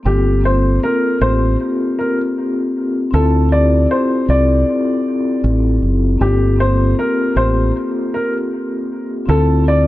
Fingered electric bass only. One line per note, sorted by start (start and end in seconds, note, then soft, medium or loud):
0.06 0.78 G1 loud
1.21 1.55 A1 medium
3.14 3.86 D2 loud
4.29 4.63 C2 medium
5.44 5.78 A1 loud
5.82 6.17 F#1 medium
6.21 6.93 G1 loud
7.36 7.71 A1 medium
9.29 9.87 D2 loud